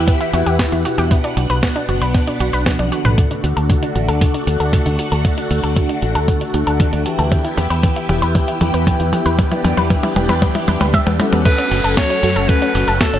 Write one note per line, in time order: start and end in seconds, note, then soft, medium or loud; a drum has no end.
0.00 0.30 E3 medium
0.00 1.09 E3 medium
0.00 0.30 E4 medium
0.00 1.09 E4 medium
0.00 0.30 G4 medium
0.00 1.09 G4 medium
0.00 0.30 B4 medium
0.00 1.09 B4 medium
0.00 0.30 F#5 loud
0.00 3.14 F#5 medium
0.08 0.20 B3 medium
0.08 kick loud
0.08 closed hi-hat medium
0.21 0.33 E4 medium
0.21 closed hi-hat soft
0.33 0.44 E2 medium
0.33 0.82 E3 medium
0.33 0.82 E4 medium
0.33 0.46 F#4 medium
0.33 0.82 G4 medium
0.33 0.82 B4 medium
0.33 0.82 F#5 loud
0.33 closed hi-hat medium
0.46 0.57 E2 medium
0.46 0.58 G4 loud
0.46 closed hi-hat soft
0.59 0.72 B3 medium
0.59 kick medium
0.59 snare loud
0.59 closed hi-hat medium
0.72 0.83 E2 medium
0.72 0.85 E4 medium
0.72 closed hi-hat soft
0.85 1.34 B2 medium
0.85 1.34 D4 medium
0.85 0.97 F#4 medium
0.85 1.34 F#4 medium
0.85 1.34 F#5 medium
0.85 closed hi-hat medium
0.98 1.09 E2 medium
0.98 1.09 G4 loud
0.98 closed hi-hat soft
1.11 1.23 B3 medium
1.11 3.16 B3 medium
1.11 3.16 D4 medium
1.11 kick loud
1.11 closed hi-hat medium
1.24 1.36 D4 medium
1.24 closed hi-hat soft
1.37 1.48 B1 medium
1.37 1.47 B2 medium
1.37 1.47 D4 medium
1.37 1.49 F#4 medium
1.37 1.47 F#4 medium
1.37 1.47 B4 medium
1.37 1.47 F#5 medium
1.37 closed hi-hat medium
1.50 1.61 B1 medium
1.50 1.86 B2 medium
1.50 1.86 D4 medium
1.50 1.86 F#4 medium
1.50 1.61 B4 loud
1.50 1.86 B4 medium
1.50 1.86 F#5 medium
1.50 closed hi-hat soft
1.63 1.75 B3 medium
1.63 kick loud
1.63 snare loud
1.63 closed hi-hat medium
1.76 1.88 D4 medium
1.76 closed hi-hat soft
1.89 1.99 F#1 loud
1.89 2.37 B2 medium
1.89 2.37 D4 medium
1.89 2.01 F#4 medium
1.89 2.37 F#4 medium
1.89 2.37 B4 medium
1.89 2.37 F#5 medium
1.89 closed hi-hat soft
2.01 2.12 B1 medium
2.01 2.13 B4 loud
2.01 closed hi-hat soft
2.14 2.27 B3 medium
2.14 kick loud
2.14 snare soft
2.14 closed hi-hat medium
2.27 2.40 D4 medium
2.27 closed hi-hat soft
2.40 2.51 B1 medium
2.40 2.89 B2 medium
2.40 2.89 D4 medium
2.40 2.53 F#4 medium
2.40 2.89 F#4 medium
2.40 2.89 B4 medium
2.40 2.89 F#5 loud
2.40 closed hi-hat medium
2.53 2.64 B1 medium
2.53 2.65 B4 loud
2.53 closed hi-hat soft
2.66 2.78 B3 medium
2.66 kick loud
2.66 snare loud
2.66 closed hi-hat medium
2.66 high tom medium
2.79 2.90 B1 medium
2.79 2.91 D4 medium
2.79 closed hi-hat soft
2.79 high tom medium
2.92 3.41 D3 medium
2.92 3.41 D4 medium
2.92 3.04 F#4 medium
2.92 3.41 F#4 medium
2.92 3.41 A4 medium
2.92 3.41 F#5 medium
2.92 closed hi-hat medium
3.05 3.16 B1 medium
3.05 3.16 B4 loud
3.05 closed hi-hat soft
3.05 mid tom medium
3.18 3.30 A3 medium
3.18 7.28 A3 medium
3.18 7.28 D4 medium
3.18 7.28 F#4 medium
3.18 kick loud
3.18 closed hi-hat medium
3.18 mid tom medium
3.31 3.43 D4 medium
3.31 closed hi-hat soft
3.44 3.55 D2 medium
3.44 3.54 D3 medium
3.44 3.54 D4 medium
3.44 3.56 F#4 medium
3.44 3.54 F#4 medium
3.44 3.54 A4 medium
3.44 3.54 F#5 medium
3.44 closed hi-hat medium
3.57 3.68 D2 medium
3.57 3.92 D3 medium
3.57 3.92 D4 medium
3.57 3.92 F#4 medium
3.57 3.68 A4 loud
3.57 3.92 A4 medium
3.57 3.92 F#5 medium
3.57 closed hi-hat soft
3.70 3.82 A3 medium
3.70 kick loud
3.70 closed hi-hat loud
3.70 mid tom soft
3.83 3.95 D4 medium
3.83 closed hi-hat soft
3.95 4.06 A1 medium
3.95 4.44 D3 medium
3.95 4.44 D4 medium
3.95 4.44 F#4 medium
3.95 4.08 F#4 medium
3.95 4.44 A4 medium
3.95 4.44 F#5 loud
3.95 closed hi-hat soft
4.08 4.19 D2 medium
4.08 4.20 A4 loud
4.08 closed hi-hat soft
4.21 4.34 A3 medium
4.21 kick loud
4.21 closed hi-hat loud
4.21 mid tom medium
4.34 4.47 D4 medium
4.34 closed hi-hat soft
4.47 4.58 D2 medium
4.47 4.96 D3 medium
4.47 4.96 D4 medium
4.47 4.60 F#4 medium
4.47 4.96 F#4 medium
4.47 4.96 A4 medium
4.47 4.96 F#5 loud
4.47 closed hi-hat medium
4.60 4.71 D2 medium
4.60 4.71 A4 loud
4.60 closed hi-hat soft
4.73 4.85 A3 medium
4.73 kick loud
4.73 closed hi-hat medium
4.73 mid tom medium
4.86 4.97 D2 medium
4.86 4.98 D4 medium
4.86 closed hi-hat soft
4.99 5.48 D3 medium
4.99 5.48 D4 medium
4.99 5.11 F#4 medium
4.99 5.48 F#4 medium
4.99 5.48 A4 medium
4.99 5.48 F#5 medium
4.99 closed hi-hat medium
5.12 5.23 D2 medium
5.12 5.23 A4 loud
5.12 closed hi-hat soft
5.25 5.37 A3 medium
5.25 kick loud
5.25 closed hi-hat medium
5.25 mid tom medium
5.38 5.50 D4 medium
5.38 closed hi-hat soft
5.51 5.62 D2 medium
5.51 5.60 D3 medium
5.51 5.60 D4 medium
5.51 5.63 F#4 medium
5.51 5.60 F#4 medium
5.51 5.60 A4 medium
5.51 5.60 F#5 medium
5.51 closed hi-hat medium
5.63 5.74 D2 medium
5.63 5.99 D3 medium
5.63 5.99 D4 medium
5.63 5.99 F#4 medium
5.63 5.75 A4 loud
5.63 5.99 A4 medium
5.63 5.99 F#5 medium
5.63 closed hi-hat soft
5.76 5.89 A3 medium
5.76 kick loud
5.76 closed hi-hat medium
5.76 mid tom medium
5.89 6.02 D4 medium
5.89 closed hi-hat soft
6.02 6.13 A1 loud
6.02 6.51 D3 medium
6.02 6.51 D4 medium
6.02 6.15 F#4 medium
6.02 6.51 F#4 medium
6.02 6.51 A4 medium
6.02 6.51 F#5 medium
6.02 closed hi-hat soft
6.15 6.26 D2 medium
6.15 6.27 A4 loud
6.15 closed hi-hat soft
6.28 6.40 A3 medium
6.28 kick loud
6.28 closed hi-hat loud
6.28 mid tom medium
6.41 6.53 D4 medium
6.41 closed hi-hat soft
6.54 6.65 D2 medium
6.54 7.03 D3 medium
6.54 7.03 D4 medium
6.54 7.03 F#4 medium
6.54 6.66 F#4 medium
6.54 7.03 A4 medium
6.54 7.03 F#5 loud
6.54 closed hi-hat medium
6.67 6.78 D2 medium
6.67 6.78 A4 loud
6.67 closed hi-hat soft
6.80 6.92 A3 medium
6.80 kick loud
6.80 closed hi-hat medium
6.80 mid tom medium
6.93 7.04 D2 medium
6.93 7.05 D4 medium
6.93 closed hi-hat soft
7.06 7.54 E3 medium
7.06 7.54 E4 medium
7.06 7.18 F#4 medium
7.06 7.54 G4 medium
7.06 7.54 B4 medium
7.06 7.54 G5 medium
7.06 closed hi-hat medium
7.19 7.30 D2 medium
7.19 7.30 A4 loud
7.19 closed hi-hat soft
7.32 7.44 B3 medium
7.32 11.41 B3 medium
7.32 9.36 E4 medium
7.32 11.41 G4 medium
7.32 kick loud
7.32 closed hi-hat loud
7.32 mid tom medium
7.44 7.57 E4 medium
7.44 closed hi-hat soft
7.57 7.68 E2 loud
7.57 7.67 E3 medium
7.57 7.67 E4 medium
7.57 7.70 G4 medium
7.57 7.67 G4 medium
7.57 7.67 B4 medium
7.57 7.67 G5 medium
7.57 closed hi-hat medium
7.57 mid tom medium
7.70 7.81 E2 medium
7.70 8.06 E3 medium
7.70 8.06 E4 medium
7.70 8.06 G4 medium
7.70 7.82 B4 loud
7.70 8.06 B4 medium
7.70 8.06 G5 medium
7.70 closed hi-hat soft
7.83 7.96 B3 medium
7.83 kick loud
7.83 closed hi-hat loud
7.83 mid tom medium
7.96 8.09 E4 medium
7.96 closed hi-hat soft
8.09 8.20 E1 loud
8.09 8.58 E3 medium
8.09 8.58 E4 medium
8.09 8.21 G4 medium
8.09 8.58 G4 medium
8.09 8.58 B4 medium
8.09 8.58 G5 loud
8.09 closed hi-hat soft
8.09 mid tom medium
8.22 8.33 E2 medium
8.22 8.33 B4 loud
8.22 closed hi-hat soft
8.35 8.47 B3 medium
8.35 kick loud
8.35 closed hi-hat loud
8.35 mid tom medium
8.48 8.60 E4 medium
8.48 closed hi-hat soft
8.61 8.72 E2 medium
8.61 9.10 E3 loud
8.61 9.10 E4 medium
8.61 9.10 G4 medium
8.61 8.73 G4 medium
8.61 9.10 B4 medium
8.61 9.10 G5 loud
8.61 closed hi-hat medium
8.61 mid tom medium
8.74 8.85 E2 medium
8.74 8.85 B4 loud
8.74 closed hi-hat soft
8.87 8.99 B3 medium
8.87 kick loud
8.87 closed hi-hat medium
8.87 mid tom medium
9.00 9.11 E2 medium
9.00 9.12 E4 medium
9.00 closed hi-hat soft
9.13 9.61 E3 medium
9.13 9.61 E4 medium
9.13 9.25 G4 medium
9.13 9.61 G4 medium
9.13 9.61 B4 medium
9.13 9.61 G5 medium
9.13 closed hi-hat medium
9.13 mid tom medium
9.26 9.37 E2 medium
9.26 9.37 B4 loud
9.26 closed hi-hat soft
9.39 9.51 B3 medium
9.39 11.43 D4 medium
9.39 kick loud
9.39 closed hi-hat medium
9.39 mid tom loud
9.52 9.64 E4 medium
9.52 closed hi-hat soft
9.52 mid tom medium
9.64 9.75 E2 loud
9.64 9.74 E3 medium
9.64 9.74 E4 medium
9.64 9.77 G4 medium
9.64 9.74 G4 medium
9.64 9.74 B4 medium
9.64 9.74 G5 medium
9.64 closed hi-hat medium
9.64 mid tom loud
9.77 9.88 E2 medium
9.77 10.13 E3 medium
9.77 10.13 E4 medium
9.77 10.13 G4 medium
9.77 9.89 B4 loud
9.77 10.13 B4 medium
9.77 10.13 G5 medium
9.77 closed hi-hat soft
9.77 mid tom medium
9.90 10.03 B3 medium
9.90 kick loud
9.90 closed hi-hat medium
9.90 mid tom loud
10.03 10.16 E4 medium
10.03 closed hi-hat soft
10.03 mid tom medium
10.16 10.27 E1 loud
10.16 10.65 E3 medium
10.16 10.65 E4 medium
10.16 10.28 G4 medium
10.16 10.65 G4 medium
10.16 10.65 B4 medium
10.16 10.65 G5 loud
10.16 closed hi-hat soft
10.16 mid tom loud
10.29 10.40 E2 medium
10.29 10.40 B4 loud
10.29 closed hi-hat soft
10.29 mid tom medium
10.42 10.54 B3 medium
10.42 kick loud
10.42 closed hi-hat medium
10.42 mid tom loud
10.55 10.67 E4 medium
10.55 closed hi-hat soft
10.55 mid tom medium
10.68 10.79 E2 medium
10.68 10.84 E3 medium
10.68 10.84 E4 medium
10.68 10.84 G4 medium
10.68 10.84 B4 medium
10.68 10.79 B4 medium
10.68 10.84 G5 medium
10.68 closed hi-hat medium
10.68 mid tom loud
10.81 10.92 D2 medium
10.81 10.92 B4 loud
10.81 closed hi-hat soft
10.81 mid tom medium
10.94 11.01 E5 loud
10.94 kick loud
10.94 closed hi-hat loud
10.94 mid tom loud
11.07 11.18 E2 medium
11.07 11.13 B3 medium
11.07 closed hi-hat soft
11.07 mid tom loud
11.20 11.68 F#3 medium
11.20 11.68 C#4 medium
11.20 11.31 E4 medium
11.20 11.68 F#4 medium
11.20 11.68 A4 medium
11.20 11.68 F#5 loud
11.20 closed hi-hat medium
11.20 mid tom loud
11.33 11.43 E2 medium
11.33 11.44 B3 medium
11.33 closed hi-hat soft
11.33 mid tom loud
11.45 13.19 A3 medium
11.45 11.58 A3 medium
11.45 13.19 C#4 medium
11.45 13.19 F#4 medium
11.45 11.94 B4 loud
11.45 kick loud
11.45 closed hi-hat loud
11.45 crash loud
11.45 downlifter medium
11.45 cabasa medium
11.58 11.71 C#4 medium
11.58 closed hi-hat soft
11.58 cabasa soft
11.71 11.82 F#1 loud
11.71 11.81 F#3 medium
11.71 11.81 C#4 medium
11.71 11.81 F#4 medium
11.71 11.84 F#4 medium
11.71 11.81 A4 medium
11.71 11.81 F#5 medium
11.71 open hi-hat loud
11.84 11.95 F#1 medium
11.84 12.20 F#3 medium
11.84 12.20 C#4 medium
11.84 12.20 F#4 medium
11.84 11.96 A4 loud
11.84 12.20 A4 medium
11.84 12.20 F#5 medium
11.84 closed hi-hat soft
11.84 cabasa medium
11.97 12.09 A3 medium
11.97 12.50 C#5 loud
11.97 kick loud
11.97 snare loud
11.97 closed hi-hat loud
11.97 cabasa medium
12.10 12.22 C#4 medium
12.10 closed hi-hat soft
12.10 cabasa soft
12.23 12.34 F#2 loud
12.23 12.72 F#3 medium
12.23 12.72 C#4 medium
12.23 12.72 F#4 medium
12.23 12.35 F#4 medium
12.23 12.72 A4 medium
12.23 12.72 F#5 loud
12.23 open hi-hat medium
12.36 12.47 F#1 medium
12.36 12.47 A4 loud
12.36 closed hi-hat soft
12.36 cabasa medium
12.49 12.61 A3 medium
12.49 13.02 B4 loud
12.49 kick loud
12.49 closed hi-hat loud
12.49 cabasa medium
12.62 12.74 C#4 medium
12.62 closed hi-hat soft
12.62 cabasa soft
12.75 12.86 F#1 medium
12.75 12.90 F#3 medium
12.75 12.90 C#4 medium
12.75 12.90 F#4 medium
12.75 12.87 F#4 medium
12.75 12.90 A4 medium
12.75 open hi-hat loud
12.88 12.99 F#1 medium
12.88 12.99 A4 loud
12.88 closed hi-hat soft
12.88 cabasa medium
13.01 13.13 A3 medium
13.01 13.19 A4 loud
13.01 kick loud
13.01 snare loud
13.01 closed hi-hat loud
13.01 cabasa soft
13.14 13.19 F#1 medium
13.14 13.19 C#4 medium
13.14 closed hi-hat soft
13.14 cabasa soft